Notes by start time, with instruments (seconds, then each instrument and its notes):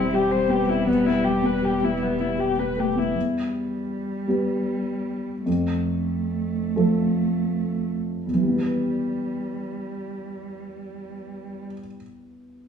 Already playing: sub bass E1, grand piano E2 G3 C4 G4, cello G3, violin E4
0.13 grand piano G4, violin G4
0.30 grand piano C4, violin C5
0.48 grand piano B3, violin G4
0.67 grand piano C4, violin E4
0.86 grand piano E2, violin B3
1.06 grand piano B3, violin E4
1.24 grand piano G3, violin G4
1.43 grand piano B3, violin B4
1.62 grand piano G4, violin G4
1.83 grand piano B3, violin E4
2.01 grand piano G3, violin B3
2.20 grand piano B3, violin E4
2.38 grand piano G4, violin G4
2.58 grand piano B3, violin B4
2.77 grand piano A3, violin G4
2.96 grand piano B3, violin E4
3.15 grand piano E2, cello G3
4.27 grand piano G3 B3 G4
5.45 grand piano F2, cello A3
6.76 grand piano F3 A3 A4
8.26 grand piano E2, cello G3
8.34 grand piano E3
8.41 grand piano G3
8.48 grand piano B3
8.55 grand piano G4
8.62 grand piano B4